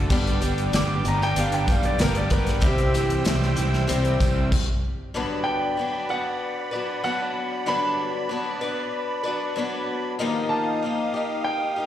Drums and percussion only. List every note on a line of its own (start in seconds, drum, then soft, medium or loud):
0.10 kick loud
0.10 crash medium
0.10 tambourine medium
0.27 closed hi-hat soft
0.42 closed hi-hat medium
0.42 tambourine medium
0.58 closed hi-hat soft
0.73 snare loud
0.73 closed hi-hat loud
0.73 tambourine loud
1.05 closed hi-hat medium
1.05 tambourine soft
1.21 snare soft
1.36 closed hi-hat loud
1.52 closed hi-hat soft
1.68 kick medium
1.68 closed hi-hat medium
1.68 tambourine medium
1.83 closed hi-hat soft
1.99 snare loud
1.99 closed hi-hat loud
1.99 tambourine medium
2.15 closed hi-hat medium
2.30 kick medium
2.30 closed hi-hat medium
2.30 tambourine medium
2.47 snare soft
2.47 closed hi-hat soft
2.62 kick loud
2.62 closed hi-hat loud
2.62 tambourine medium
2.78 closed hi-hat soft
2.94 closed hi-hat medium
2.94 tambourine medium
3.10 closed hi-hat medium
3.25 snare loud
3.25 closed hi-hat loud
3.25 tambourine medium
3.43 snare soft
3.57 closed hi-hat medium
3.57 tambourine soft
3.73 snare soft
3.89 closed hi-hat loud
3.89 tambourine soft
4.05 closed hi-hat soft
4.20 kick medium
4.20 closed hi-hat medium
4.20 tambourine medium
4.52 kick loud
4.52 crash loud